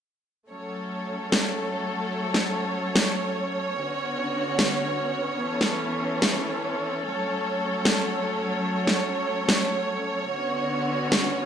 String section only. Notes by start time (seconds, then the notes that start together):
0.51 F#3 A3 C#4 A4 C#5
3.77 D3 B3 F#4
5.40 E3 A4
7.04 F#3 A3 C#5
10.30 D3 B3 C#4 F#4